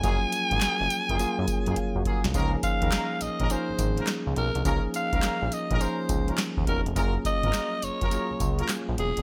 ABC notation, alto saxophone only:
X:1
M:4/4
L:1/8
Q:"Swing 16ths" 1/4=104
K:Db
V:1 name="Alto saxophone"
a6- a z | z f2 e c2 z B | z f2 e c2 z B | z e2 d3 z A |]